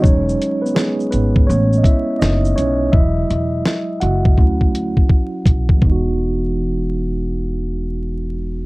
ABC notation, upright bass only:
X:1
M:4/4
L:1/16
Q:"Swing 16ths" 1/4=83
K:E
V:1 name="Upright bass" clef=bass
E,,,2 z4 G,,,2 A,,,2 z2 F,,,2 B,,,2 | E,,,2 E,,,2 z2 F,,,2 =D,,4 z2 B,,, z | E,,,16 |]